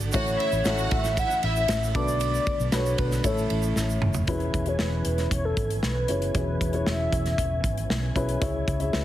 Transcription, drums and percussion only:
0.00 shaker medium
0.12 kick loud
0.12 ride medium
0.12 shaker medium
0.27 shaker medium
0.40 ride medium
0.52 shaker soft
0.65 snare loud
0.65 ride medium
0.65 shaker soft
0.78 shaker soft
0.91 kick medium
0.91 ride medium
1.04 snare soft
1.04 shaker medium
1.17 kick medium
1.17 ride medium
1.17 shaker medium
1.31 shaker soft
1.43 ride medium
1.56 shaker medium
1.68 snare loud
1.68 ride medium
1.68 shaker medium
1.83 shaker soft
1.95 kick loud
1.95 ride medium
2.08 shaker medium
2.20 ride medium
2.20 shaker medium
2.34 shaker medium
2.47 kick medium
2.47 ride medium
2.60 shaker medium
2.72 snare loud
2.72 ride medium
2.72 shaker medium
2.86 shaker soft
2.98 kick medium
2.98 ride medium
3.11 snare soft
3.11 shaker medium
3.24 kick medium
3.24 ride medium
3.24 shaker medium
3.38 shaker soft
3.50 ride medium
3.63 shaker medium
3.76 snare medium
3.76 shaker medium
3.90 shaker soft
4.02 mid tom loud
4.14 floor tom medium
4.14 shaker medium
4.27 kick medium
4.27 closed hi-hat medium
4.40 closed hi-hat soft
4.54 kick medium
4.54 closed hi-hat medium
4.66 closed hi-hat soft
4.79 snare loud
5.05 closed hi-hat medium
5.18 snare soft
5.18 closed hi-hat soft
5.31 kick medium
5.31 closed hi-hat medium
5.57 kick medium
5.57 closed hi-hat medium
5.70 closed hi-hat medium
5.83 snare medium
6.08 closed hi-hat medium
6.22 closed hi-hat soft
6.35 kick medium
6.35 closed hi-hat medium
6.61 kick medium
6.61 closed hi-hat medium
6.73 closed hi-hat soft
6.86 snare loud
7.13 kick medium
7.13 closed hi-hat medium
7.25 snare soft
7.25 closed hi-hat soft
7.38 kick medium
7.38 closed hi-hat medium
7.64 kick medium
7.64 closed hi-hat medium
7.78 closed hi-hat soft
7.90 snare medium
8.16 kick medium
8.16 closed hi-hat medium
8.29 closed hi-hat soft
8.42 kick loud
8.42 closed hi-hat medium
8.68 kick medium
8.68 closed hi-hat medium
8.80 closed hi-hat soft
8.93 snare loud

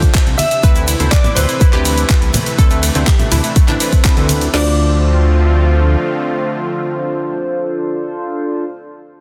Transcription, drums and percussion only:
0.02 kick medium
0.02 closed hi-hat medium
0.02 shaker soft
0.15 kick loud
0.15 clap loud
0.15 closed hi-hat medium
0.15 shaker soft
0.27 closed hi-hat soft
0.39 open hi-hat loud
0.39 ride medium
0.39 high conga medium
0.39 shaker medium
0.51 closed hi-hat medium
0.51 shaker soft
0.63 kick loud
0.63 closed hi-hat medium
0.63 shaker medium
0.76 closed hi-hat soft
0.76 shaker soft
0.88 open hi-hat loud
0.88 ride medium
0.88 shaker loud
1.00 closed hi-hat medium
1.00 high conga medium
1.00 shaker soft
1.12 kick loud
1.12 clap loud
1.12 closed hi-hat medium
1.12 shaker medium
1.24 closed hi-hat soft
1.24 low conga medium
1.24 shaker soft
1.36 open hi-hat loud
1.36 ride medium
1.36 low conga medium
1.36 shaker medium
1.49 closed hi-hat medium
1.49 shaker soft
1.61 kick loud
1.61 closed hi-hat medium
1.61 shaker medium
1.73 clap soft
1.73 closed hi-hat soft
1.73 high conga medium
1.85 open hi-hat loud
1.85 ride medium
1.85 shaker medium
1.98 closed hi-hat medium
1.98 shaker soft
2.10 kick loud
2.10 clap loud
2.10 closed hi-hat medium
2.10 shaker medium
2.22 closed hi-hat soft
2.34 open hi-hat loud
2.34 ride medium
2.34 high conga medium
2.34 low conga medium
2.34 shaker medium
2.46 closed hi-hat medium
2.46 shaker soft
2.58 kick loud
2.58 closed hi-hat medium
2.58 shaker medium
2.70 closed hi-hat soft
2.70 shaker soft
2.83 open hi-hat loud
2.83 ride medium
2.83 shaker medium
2.95 closed hi-hat medium
2.95 high conga medium
2.95 shaker soft
3.07 kick loud
3.07 clap loud
3.07 closed hi-hat medium
3.07 shaker medium
3.19 closed hi-hat soft
3.19 low conga medium
3.19 shaker soft
3.31 open hi-hat loud
3.31 ride medium
3.31 low conga medium
3.31 shaker medium
3.44 closed hi-hat medium
3.44 shaker soft
3.56 kick loud
3.56 closed hi-hat medium
3.56 shaker medium
3.68 clap soft
3.68 closed hi-hat soft
3.68 high conga medium
3.68 shaker soft
3.80 open hi-hat loud
3.80 ride medium
3.80 shaker medium
3.93 kick medium
3.93 closed hi-hat medium
3.93 shaker soft
4.05 kick loud
4.05 clap loud
4.05 closed hi-hat medium
4.05 shaker medium
4.17 closed hi-hat soft
4.29 open hi-hat loud
4.29 ride medium
4.29 high conga loud
4.29 shaker medium
4.41 closed hi-hat medium
4.41 shaker soft
4.54 snare loud
4.54 crash medium

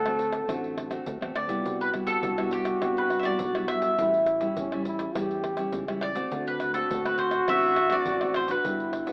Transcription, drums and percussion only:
0.06 pandeiro soft
0.06 tamborim medium
0.06 shaker soft
0.19 pandeiro medium
0.19 shaker medium
0.32 pandeiro medium
0.32 tamborim medium
0.32 shaker medium
0.49 pandeiro medium
0.49 tamborim medium
0.49 shaker medium
0.49 surdo medium
0.64 pandeiro soft
0.64 shaker soft
0.78 pandeiro medium
0.78 tamborim medium
0.91 pandeiro medium
0.91 tamborim medium
0.91 shaker medium
1.06 pandeiro medium
1.06 shaker medium
1.06 surdo loud
1.22 pandeiro soft
1.22 tamborim medium
1.22 shaker soft
1.35 pandeiro medium
1.35 tamborim medium
1.35 shaker medium
1.49 pandeiro medium
1.49 shaker medium
1.65 pandeiro medium
1.65 shaker medium
1.65 surdo medium
1.81 pandeiro soft
1.81 shaker soft
1.94 pandeiro medium
1.94 tamborim medium
1.94 surdo medium
2.07 pandeiro medium
2.07 shaker medium
2.23 pandeiro medium
2.23 shaker medium
2.23 surdo loud
2.38 pandeiro soft
2.38 tamborim medium
2.38 shaker soft
2.51 pandeiro medium
2.65 pandeiro medium
2.65 tamborim medium
2.65 shaker medium
2.82 pandeiro medium
2.82 tamborim medium
2.82 shaker medium
2.82 surdo medium
2.97 pandeiro soft
2.97 shaker soft
3.10 pandeiro medium
3.10 tamborim medium
3.23 pandeiro medium
3.23 tamborim medium
3.23 shaker medium
3.39 pandeiro medium
3.39 shaker medium
3.39 surdo loud
3.55 pandeiro soft
3.55 tamborim medium
3.55 shaker soft
3.68 pandeiro medium
3.68 tamborim medium
3.82 pandeiro medium
3.82 shaker medium
3.99 pandeiro medium
3.99 shaker medium
3.99 surdo medium
4.14 pandeiro soft
4.14 shaker soft
4.26 pandeiro medium
4.26 tamborim medium
4.26 shaker medium
4.41 pandeiro medium
4.41 shaker medium
4.57 pandeiro medium
4.57 shaker medium
4.57 surdo loud
4.72 pandeiro soft
4.72 tamborim medium
4.72 shaker soft
4.85 pandeiro medium
4.85 shaker medium
4.99 pandeiro medium
4.99 tamborim medium
4.99 shaker medium
5.15 pandeiro medium
5.15 tamborim medium
5.15 shaker medium
5.15 surdo medium
5.31 pandeiro soft
5.31 shaker soft
5.44 pandeiro medium
5.44 tamborim medium
5.57 pandeiro medium
5.57 tamborim medium
5.57 shaker medium
5.72 pandeiro medium
5.72 shaker medium
5.72 surdo loud
5.88 pandeiro soft
5.88 tamborim medium
5.88 shaker soft
6.01 pandeiro medium
6.01 tamborim medium
6.15 pandeiro medium
6.15 shaker medium
6.32 pandeiro medium
6.32 shaker medium
6.32 surdo medium
6.47 pandeiro soft
6.47 shaker soft
6.60 pandeiro medium
6.60 tamborim medium
6.60 shaker medium
6.60 surdo medium
6.74 pandeiro medium
6.74 shaker medium
6.91 pandeiro medium
6.91 shaker medium
6.91 surdo loud
7.05 pandeiro soft
7.05 tamborim medium
7.05 shaker soft
7.18 pandeiro medium
7.31 pandeiro medium
7.31 tamborim medium
7.31 shaker medium
7.48 pandeiro medium
7.48 tamborim medium
7.48 shaker medium
7.48 surdo medium
7.63 pandeiro soft
7.63 shaker soft
7.76 pandeiro medium
7.76 tamborim medium
7.76 shaker medium
7.90 pandeiro medium
7.90 tamborim medium
7.90 shaker medium
8.06 pandeiro medium
8.06 shaker medium
8.06 surdo loud
8.21 pandeiro soft
8.21 tamborim medium
8.21 shaker soft
8.34 pandeiro medium
8.34 tamborim medium
8.48 pandeiro medium
8.48 shaker medium
8.65 pandeiro medium
8.65 shaker medium
8.65 surdo medium
8.80 pandeiro soft
8.80 shaker soft
8.93 pandeiro medium
8.93 tamborim medium
9.07 pandeiro medium
9.07 shaker medium

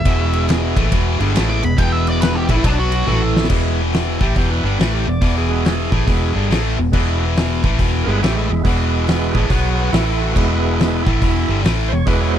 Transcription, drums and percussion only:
0.05 kick loud
0.05 ride medium
0.33 ride medium
0.49 snare loud
0.49 ride medium
0.76 kick loud
0.76 ride medium
0.92 kick loud
0.92 ride medium
1.20 ride medium
1.35 snare loud
1.35 ride loud
1.63 ride medium
1.78 kick loud
1.78 ride medium
2.07 ride medium
2.22 snare loud
2.22 ride loud
2.49 kick loud
2.49 ride medium
2.64 kick loud
2.64 ride loud
2.92 ride medium
3.07 high tom medium
3.36 snare medium
3.44 snare medium
3.50 kick loud
3.50 crash loud
3.93 snare loud
3.93 open hi-hat medium
4.21 kick loud
4.36 kick loud
4.36 open hi-hat medium
4.79 snare loud
4.79 open hi-hat medium
5.22 kick loud
5.22 open hi-hat medium
5.65 snare loud
5.65 open hi-hat medium
5.92 kick loud
6.08 kick loud
6.08 open hi-hat medium
6.51 snare loud
6.51 open hi-hat medium
6.93 kick loud
6.93 crash medium
7.36 snare loud
7.36 open hi-hat medium
7.64 kick loud
7.79 kick loud
7.79 open hi-hat medium
8.23 snare loud
8.23 open hi-hat medium
8.65 kick loud
8.65 open hi-hat medium
9.07 snare loud
9.07 open hi-hat medium
9.35 kick loud
9.50 kick loud
9.50 open hi-hat medium
9.93 snare loud
9.93 open hi-hat medium
10.36 kick loud
10.36 crash medium
10.79 snare loud
10.79 open hi-hat medium
11.07 kick loud
11.22 kick loud
11.22 open hi-hat medium
11.64 snare loud
11.64 open hi-hat medium
12.07 kick loud
12.07 open hi-hat medium

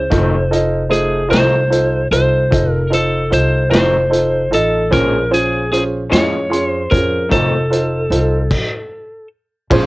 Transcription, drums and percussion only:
0.12 kick loud
0.12 closed hi-hat medium
0.53 closed hi-hat medium
0.93 closed hi-hat soft
1.33 snare loud
1.33 closed hi-hat medium
1.72 closed hi-hat medium
2.13 closed hi-hat medium
2.52 kick loud
2.52 closed hi-hat medium
2.93 closed hi-hat medium
3.33 closed hi-hat medium
3.73 snare loud
3.73 closed hi-hat medium
4.13 closed hi-hat medium
4.53 closed hi-hat soft
4.92 kick medium
4.92 closed hi-hat medium
5.33 closed hi-hat medium
5.73 closed hi-hat medium
6.13 snare loud
6.13 closed hi-hat medium
6.53 closed hi-hat soft
6.92 kick medium
6.92 closed hi-hat medium
7.32 kick loud
7.32 closed hi-hat medium
7.73 closed hi-hat soft
8.12 closed hi-hat medium
8.51 kick medium
8.51 crash medium
9.71 kick loud
9.71 ride medium

